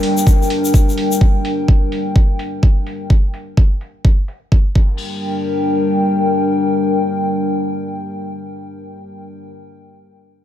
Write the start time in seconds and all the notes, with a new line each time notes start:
Already playing: G3 D4 A#4 G5, downlifter
0.03 open hi-hat
0.17 shaker
0.27 kick, shaker
0.42 shaker
0.50 open hi-hat
0.65 shaker
0.74 kick, shaker
0.89 shaker
0.98 open hi-hat
1.12 shaker
1.21 kick
1.45 open hi-hat
1.68 kick
1.92 open hi-hat
2.16 kick
2.39 open hi-hat
2.63 kick
2.87 open hi-hat
3.10 kick
3.34 open hi-hat
3.57 kick
3.81 open hi-hat
4.05 kick
4.28 open hi-hat
4.52 kick
4.75 G3 D4 A#4 G5, kick, crash